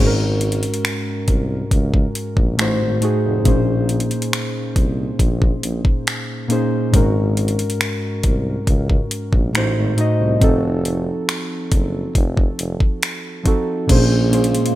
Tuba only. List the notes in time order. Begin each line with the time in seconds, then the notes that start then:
Already playing: G#1
1.28 C2
1.71 C#2
2.37 A#1
2.59 A1
2.81 G#1
3.24 F1
3.45 A#1
4.76 C2
5.19 A#1
5.63 A#1
6.94 G#1
8.24 C2
8.67 C#2
9.33 A#1
9.55 A1
9.76 G#1
10.20 C2
10.42 F1
11.72 F#1
12.15 F1
12.59 F1
13.89 A#1